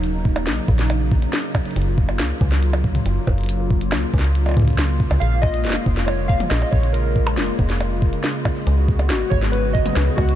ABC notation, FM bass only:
X:1
M:4/4
L:1/16
Q:1/4=139
K:Gb
V:1 name="FM bass" clef=bass
E,,,4 B,,, z B,,,4- B,,, z4 z | G,,,4 D,, z D,,4- D,, z G,,, z G,,,2- | G,,,4 D,, z D,,4 D,,4 z D,, | B,,,4 F,,, z F,,,4- F,,, z B,,, z B,,,2- |
B,,,4 F,,, z F,,,4- F,,, z4 z | D,,4 A,,, z A,,,4- A,,, z D,, z D,,2 |]